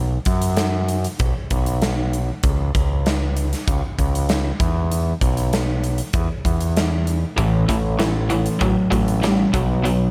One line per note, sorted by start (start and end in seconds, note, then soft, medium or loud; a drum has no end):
0.00 0.17 B1 medium
0.25 1.05 F#2 medium
0.25 kick medium
0.25 closed hi-hat medium
0.42 closed hi-hat medium
0.57 snare medium
0.57 closed hi-hat medium
0.89 closed hi-hat medium
1.04 closed hi-hat medium
1.19 1.33 B1 medium
1.19 kick loud
1.19 closed hi-hat medium
1.50 2.30 B1 medium
1.50 kick medium
1.50 closed hi-hat medium
1.66 closed hi-hat medium
1.82 snare loud
1.82 closed hi-hat medium
2.13 closed hi-hat medium
2.43 2.70 C#2 medium
2.43 kick loud
2.43 closed hi-hat medium
2.75 3.53 C#2 medium
2.75 kick medium
2.75 closed hi-hat soft
3.06 snare medium
3.06 closed hi-hat medium
3.37 closed hi-hat medium
3.53 snare soft
3.53 closed hi-hat medium
3.68 3.81 C#2 medium
3.68 kick medium
3.68 closed hi-hat medium
3.99 4.51 C#2 medium
3.99 kick medium
3.99 closed hi-hat medium
4.15 closed hi-hat medium
4.29 snare loud
4.29 closed hi-hat medium
4.60 5.12 E2 medium
4.60 kick medium
4.60 closed hi-hat soft
4.92 closed hi-hat medium
5.21 6.00 B1 medium
5.21 kick medium
5.21 closed hi-hat medium
5.37 closed hi-hat medium
5.53 snare medium
5.53 closed hi-hat medium
5.84 closed hi-hat medium
5.98 closed hi-hat medium
6.13 6.27 E2 medium
6.13 kick loud
6.13 closed hi-hat medium
6.45 7.23 E2 medium
6.45 kick medium
6.45 closed hi-hat medium
6.61 closed hi-hat medium
6.77 snare medium
6.77 closed hi-hat medium
7.07 closed hi-hat medium
7.36 7.64 A1 medium
7.36 7.98 A2 medium
7.36 7.65 A2 medium
7.36 7.98 E3 medium
7.36 7.65 E3 medium
7.36 7.98 A3 medium
7.36 7.99 C#4 medium
7.36 8.00 A4 medium
7.36 kick medium
7.36 closed hi-hat medium
7.68 8.47 A1 medium
7.68 7.96 A2 medium
7.68 7.96 E3 medium
7.68 kick medium
7.68 closed hi-hat medium
7.99 8.27 A2 medium
7.99 8.30 E3 medium
7.99 8.27 E3 medium
7.99 8.30 A3 medium
7.99 8.30 C#4 medium
7.99 8.29 A4 medium
7.99 snare loud
7.99 closed hi-hat medium
8.29 8.57 A2 medium
8.29 8.57 E3 medium
8.29 8.91 A3 soft
8.29 8.90 C#4 medium
8.29 8.89 A4 soft
8.29 closed hi-hat medium
8.46 closed hi-hat medium
8.59 8.74 A1 medium
8.59 8.87 A2 medium
8.59 8.88 F#3 medium
8.59 kick medium
8.59 closed hi-hat medium
8.90 9.44 A1 medium
8.90 9.18 A2 medium
8.90 9.19 F#3 medium
8.90 9.21 A3 soft
8.90 9.22 C#4 soft
8.90 9.21 A4 medium
8.90 kick medium
8.90 closed hi-hat medium
9.08 closed hi-hat medium
9.21 9.50 A2 medium
9.21 9.52 E3 medium
9.21 9.50 G3 medium
9.21 9.53 A3 medium
9.21 9.53 C#4 medium
9.21 9.53 A4 medium
9.21 snare medium
9.21 closed hi-hat medium
9.53 10.06 B1 medium
9.53 9.81 B2 medium
9.53 10.11 B2 medium
9.53 9.81 F#3 medium
9.53 10.11 F#3 soft
9.53 10.11 B3 medium
9.53 10.11 D#4 medium
9.53 10.11 F#4 medium
9.53 kick medium
9.53 closed hi-hat medium
9.83 10.11 B2 medium
9.83 10.11 F#3 medium
9.83 closed hi-hat medium